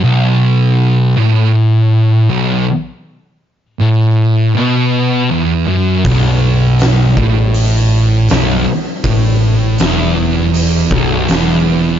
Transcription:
<<
  \new Staff \with { instrumentName = "Distorted electric guitar" } { \clef bass \time 4/4 \key c \lydian \tempo 4 = 80 b,,4. a,4. b,,8 r8 | r4 a,4 b,4 e,8 fis,8 | b,,4. a,4. b,,8 r8 | a,4 e,4. b,,8 e,4 | }
  \new Staff \with { instrumentName = "Distorted electric guitar" } { \clef bass \time 4/4 \key c \lydian b,,4. a,4. b,,8 r8 | r4 a,4 b,4 e,8 fis,8 | b,,4. a,4. b,,8 r8 | a,4 e,4. b,,8 e,4 | }
  \new Staff \with { instrumentName = "Fingered electric bass" } { \clef bass \time 4/4 \key c \lydian r1 | r1 | b,,,4. a,,4. b,,,8 r8 | a,,4 e,,4. b,,,8 e,,4 | }
  \new DrumStaff \with { instrumentName = "Drums" } \drummode { \time 4/4 r4 r4 r4 r4 | r4 r4 r4 r4 | <hho bd>4 <hho sn>8 bd8 hho4 <hho sn>4 | <hho bd>4 <hho sn>4 hho8 bd8 <hho sn>4 | }
>>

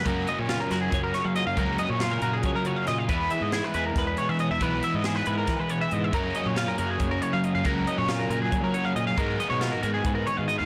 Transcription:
<<
  \new Staff \with { instrumentName = "Clean electric guitar" } { \time 7/8 \key fis \major \tempo 4 = 138 ais'8 dis''16 cis''16 eis'16 ais'16 ais'16 gis'8 ais'16 cis''16 eis''16 dis''16 eis''16 | ais'8 dis''16 cis''16 eis'16 ais'16 ais'16 gis'8 ais'16 cis''16 eis''16 dis''16 eis''16 | b'8 e''16 dis''16 gis'16 b'16 b'16 ais'8 b'16 cis''16 e''16 dis''16 e''16 | b'8 e''16 dis''16 gis'16 b'16 b'16 ais'8 b'16 cis''16 e''16 dis''16 e''16 |
ais'8 dis''16 cis''16 eis'16 ais'16 ais'16 gis'8 ais'16 cis''16 eis''16 dis''16 eis''16 | ais'8 dis''16 cis''16 eis'16 ais'16 ais'16 gis'8 ais'16 cis''16 eis''16 dis''16 eis''16 | ais'8 dis''16 cis''16 eis'16 ais'16 ais'16 gis'8 ais'16 cis''16 eis''16 dis''16 eis''16 | }
  \new Staff \with { instrumentName = "Clean electric guitar" } { \time 7/8 \key fis \major << { ais4 eis'4 cis''4 eis'8 | r4 eis'4 cis''4 eis'8 | r4 e'4 b'4 cis'16 e'16 | r4 e'4 b'4 e'8 |
r4 eis'4 cis''4 eis'8 | r4 eis'4 cis''4 eis'8 | r4 fis'4 b'4 fis'8 | } \\ { <fis, fis>4. fis4 cis4 | fis,4. fis4 cis4 | e4. gis4 b,4 | e4. gis4 b,4 |
fis,4. fis4 cis4 | r4. fis4 cis4 | gis,4. gis4 dis4 | } >> }
  \new Staff \with { instrumentName = "Overdriven electric guitar" } { \clef bass \time 7/8 \key fis \major <fis, cis fis ais cis'>2.~ <fis, cis fis ais cis'>8 | <fis, cis fis ais cis'>2.~ <fis, cis fis ais cis'>8 | <e gis b e'>2.~ <e gis b e'>8 | <e gis b e'>2.~ <e gis b e'>8 |
<fis, cis fis ais cis'>2.~ <fis, cis fis ais cis'>8 | <fis, cis fis ais cis'>2.~ <fis, cis fis ais cis'>8 | <gis, dis gis b dis'>2.~ <gis, dis gis b dis'>8 | }
  \new Staff \with { instrumentName = "Fingered electric bass" } { \clef bass \time 7/8 \key fis \major fis,8 r16 ais,8 r16 fis,8 fis,8 r16 fis8 fis,16 | cis,8 r16 ais,8. ais,8 fis16 fis8. ais,8 | e,8 r16 gis,8 r16 e,8 e,8 r16 e8 e,16 | b,,8 r16 gis,8. gis,8 e16 e8. gis,8 |
fis,8 r16 ais,8 r16 fis,8 fis,8 r16 fis8 fis,16 | cis,8 r16 ais,8. ais,8 fis16 fis8. ais,8 | gis,8 r16 b,8 r16 gis,8 gis,8 r16 gis,8 dis,16 | }
  \new DrumStaff \with { instrumentName = "Drums" } \drummode { \time 7/8 <hh bd>8 hh8 <hh sn>8 <hh sn>8 <hh bd>8 <hh sn>8 hh8 | <hh bd>8 hh8 <hh sn>8 hh8 <hh bd>8 hh8 <hh sn>8 | <hh bd>8 hh8 <hh sn>8 hh8 <hh bd sn>8 hh8 hh8 | <hh bd>8 hh8 <hh sn>8 hh8 <hh bd sn>8 hh8 hh8 |
<hh bd>8 hh8 <hh sn>8 hh8 <hh bd>8 hh8 hh8 | <hh bd>8 hh8 <hh sn>8 hh8 <hh bd>8 hh8 hh8 | <hh bd>8 hh8 <hh sn>8 hh8 <hh bd>8 hh8 hh8 | }
>>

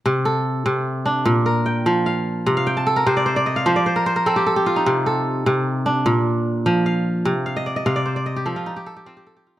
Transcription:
<<
  \new Staff \with { instrumentName = "Kora" } { \time 12/8 \key c \dorian \tempo 4. = 100 << { r1. | r16 f''16 g''16 a''16 a'16 bes'16 c''16 d''16 c''16 d''16 ees''16 f''16 c''16 d''16 c''16 bes'16 c''16 bes'16 a'16 g'16 a'16 g'16 f'16 ees'16~ | ees'16 r1 r4. r16 | r8 f''16 ees''16 d''16 ees''16 f''16 d''16 c''16 d''16 ees''16 g'16 a'16 f'16 ees'16 g'16 a'16 g'16 f'16 g'16 a'16 g'16 f'8 | } \\ { r8 a'4. r8 d'4 bes'8 g''4 f''4~ | f''8 r1 r4. | r8 a'4. r8 d'4 r4. f''4~ | f''8 r1 r4. | } >> }
  \new Staff \with { instrumentName = "Kora" } { \clef bass \time 12/8 \key c \dorian c4 r8 c4 r8 bes,4 r8 f4 r8 | c4 r8 c4 r8 f4 r8 c'4 r8 | c4 r8 c4 r8 bes,4 r8 f4 r8 | c4 r8 c4 r8 f4 r8 c'4 r8 | }
>>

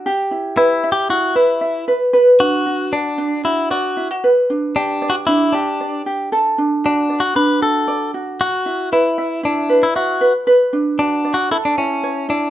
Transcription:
<<
  \new Staff \with { instrumentName = "Ukulele" } { \time 4/4 \key e \dorian \tempo 4 = 115 g'8 e'8 b'8 e''8 e'8 b'8 e''8 b'8 | b'8 d'8 fis'8 d''8 d'8 fis'8 d''8 e'16 fis'16 | b'8 d'8 g'8 d''8 d'8 g'8 d''8 g'8 | a'8 d'8 fis'8 d''8 d'8 fis'8 d''8 fis'8 |
r8 e'8 b'8 e''8 e'8 b'8 e''8 b'8 | b'8 d'8 fis'8 d''8 a'8 e'8 cis''8 e'8 | }
  \new Staff \with { instrumentName = "Clean electric guitar" } { \time 4/4 \key e \dorian r4 \tuplet 3/2 { e'4 g'8 } fis'8 e'4 r8 | r8 fis'4 d'4 e'8 fis'8. r16 | r4 \tuplet 3/2 { d'4 fis'8 } e'8 d'4 r8 | r4 \tuplet 3/2 { d'4 fis'8 } b'8 a'4 r8 |
fis'4 e'4 d'8. e'16 fis'8. r16 | r4 \tuplet 3/2 { d'4 fis'8 } e'16 d'16 cis'4 d'8 | }
>>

